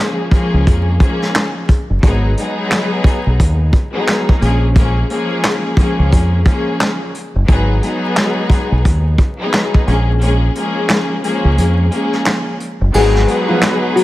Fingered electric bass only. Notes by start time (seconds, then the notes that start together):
0.54 C#2
0.67 F2
1.90 F#1
2.03 G#1
3.26 B1
3.40 D#2
4.42 A#1
5.99 C#2
6.13 F2
7.35 F#1
7.49 G#1
8.72 B1
8.85 D#2
9.87 A#1
11.45 C#2
11.58 F2
12.81 F#1
12.94 G#1